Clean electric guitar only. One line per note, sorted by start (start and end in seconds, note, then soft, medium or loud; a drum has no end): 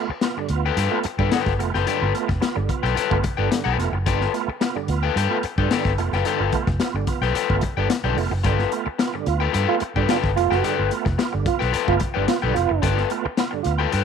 0.10 muted clean electric guitar stroke medium
0.24 muted clean electric guitar stroke soft
0.38 muted clean electric guitar stroke soft
0.66 0.76 F4 medium
0.66 0.77 A4 medium
0.66 0.77 B4 medium
0.66 0.78 G5 medium
0.77 0.97 F4 loud
0.77 0.98 A4 medium
0.77 0.98 B4 medium
0.77 0.98 G5 loud
1.05 muted clean electric guitar stroke soft
1.19 1.30 F4 medium
1.19 1.31 A4 medium
1.19 1.32 B4 medium
1.19 1.32 G5 medium
1.31 1.52 F4 medium
1.31 1.52 A4 medium
1.31 1.53 B4 medium
1.31 1.53 G5 medium
1.59 muted clean electric guitar stroke soft
1.74 1.85 F4 medium
1.74 1.86 A4 medium
1.74 1.87 B4 medium
1.74 1.87 G5 medium
1.87 2.12 F4 medium
1.87 2.12 A4 medium
1.87 2.12 B4 medium
1.87 2.13 G5 loud
2.28 muted clean electric guitar stroke soft
2.41 muted clean electric guitar stroke soft
2.56 muted clean electric guitar stroke soft
2.83 2.94 F4 medium
2.83 2.94 A4 medium
2.83 2.95 B4 medium
2.83 2.96 G5 medium
2.95 3.16 F4 medium
2.95 3.16 A4 medium
2.95 3.16 B4 loud
2.95 3.17 G5 medium
3.23 muted clean electric guitar stroke soft
3.37 3.49 F4 soft
3.37 3.50 A4 medium
3.37 3.50 B4 medium
3.37 3.50 G5 medium
3.50 muted clean electric guitar stroke soft
3.64 3.76 F4 medium
3.64 3.77 A4 medium
3.64 3.77 B4 medium
3.64 3.77 G5 medium
3.78 muted clean electric guitar stroke soft
3.93 muted clean electric guitar stroke soft
4.06 4.31 F4 medium
4.06 4.32 A4 medium
4.06 4.32 B4 medium
4.06 4.32 G5 loud
4.49 muted clean electric guitar stroke soft
4.61 muted clean electric guitar stroke soft
4.76 muted clean electric guitar stroke medium
5.03 5.15 F4 medium
5.03 5.16 A4 medium
5.03 5.16 B4 medium
5.03 5.17 G5 medium
5.16 5.36 F4 medium
5.16 5.37 A4 loud
5.16 5.37 B4 loud
5.16 5.37 G5 loud
5.44 muted clean electric guitar stroke soft
5.58 5.70 F4 soft
5.58 5.71 A4 medium
5.58 5.72 B4 medium
5.58 5.72 G5 medium
5.72 5.91 F4 medium
5.72 5.92 A4 loud
5.72 5.92 B4 loud
5.72 5.92 G5 loud
5.99 muted clean electric guitar stroke soft
6.14 6.24 F4 medium
6.14 6.25 A4 medium
6.14 6.26 B4 medium
6.14 6.26 G5 medium
6.25 6.51 F4 medium
6.25 6.51 A4 loud
6.25 6.52 B4 medium
6.25 6.52 G5 loud
6.67 muted clean electric guitar stroke soft
6.81 muted clean electric guitar stroke soft
6.96 muted clean electric guitar stroke medium
7.22 7.33 F4 medium
7.22 7.34 A4 medium
7.22 7.35 B4 medium
7.22 7.35 G5 medium
7.34 7.55 F4 medium
7.34 7.55 A4 medium
7.34 7.56 B4 medium
7.34 7.56 G5 loud
7.63 muted clean electric guitar stroke soft
7.77 7.88 F4 medium
7.77 7.88 A4 medium
7.77 7.89 B4 medium
7.77 7.89 G5 medium
7.89 muted clean electric guitar stroke soft
8.04 8.17 F4 medium
8.04 8.16 A4 medium
8.04 8.17 B4 medium
8.04 8.18 G5 medium
8.18 muted clean electric guitar stroke soft
8.31 muted clean electric guitar stroke soft
8.44 8.70 F4 medium
8.44 8.70 A4 medium
8.44 8.71 B4 medium
8.44 8.71 G5 medium
8.86 muted clean electric guitar stroke medium
8.99 muted clean electric guitar stroke soft
9.14 muted clean electric guitar stroke soft
9.40 9.52 F4 medium
9.40 9.52 A4 medium
9.40 9.53 B4 medium
9.40 9.53 G5 medium
9.53 9.74 F4 medium
9.53 9.74 A4 loud
9.53 9.74 B4 loud
9.53 9.75 G5 loud
9.81 muted clean electric guitar stroke soft
9.96 10.08 F4 soft
9.96 10.08 A4 medium
9.96 10.09 B4 medium
9.96 10.09 G5 medium
10.09 10.29 F4 medium
10.09 10.30 A4 medium
10.09 10.30 B4 medium
10.09 10.30 G5 medium
10.36 muted clean electric guitar stroke soft
10.51 10.63 F4 medium
10.51 10.63 A4 medium
10.51 10.63 B4 medium
10.51 10.64 G5 medium
10.64 10.89 F4 medium
10.64 10.90 A4 medium
10.64 10.90 B4 loud
10.64 10.90 G5 loud
11.05 muted clean electric guitar stroke medium
11.18 muted clean electric guitar stroke soft
11.33 muted clean electric guitar stroke soft
11.59 11.71 F4 medium
11.59 11.72 A4 medium
11.59 11.72 B4 medium
11.59 11.73 G5 medium
11.72 11.93 F4 medium
11.72 11.93 A4 medium
11.72 11.94 B4 medium
11.72 11.94 G5 loud
11.99 muted clean electric guitar stroke soft
12.14 12.26 F4 soft
12.14 12.26 A4 soft
12.14 12.26 B4 medium
12.14 12.27 G5 medium
12.27 muted clean electric guitar stroke soft
12.42 12.54 F4 medium
12.42 12.54 A4 medium
12.42 12.55 B4 medium
12.42 12.55 G5 medium
12.55 muted clean electric guitar stroke soft
12.69 muted clean electric guitar stroke soft
12.82 13.08 F4 medium
12.82 13.08 A4 medium
12.82 13.09 B4 loud
12.82 13.09 G5 loud
13.26 muted clean electric guitar stroke medium
13.37 muted clean electric guitar stroke soft
13.51 muted clean electric guitar stroke soft
13.79 13.90 F4 medium
13.79 13.91 A4 medium
13.79 13.92 B4 medium
13.79 13.93 G5 medium
13.92 14.04 F4 medium
13.92 14.04 A4 medium
13.92 14.04 B4 medium
13.92 14.04 G5 loud